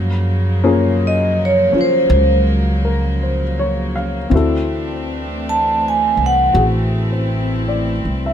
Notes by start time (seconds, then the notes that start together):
Already playing: F#2 C#3 F3 F#3 A#3
0.64 A#3 C#4 F4 G#4
1.07 D#5
1.45 C#5
1.72 C#4 F4, muted upright bass stroke
1.81 C5
2.10 C#2
2.85 A#4
3.23 C5
3.59 C#5
3.96 F5
4.30 D2 E3 A3 C4 D4 E4 F#4
4.35 A4
5.49 A5
5.88 G#5
6.17 C2
6.26 F#5
6.54 A1 E4 F#4 G#4
7.12 C5
7.68 D5
8.05 C2
8.26 E5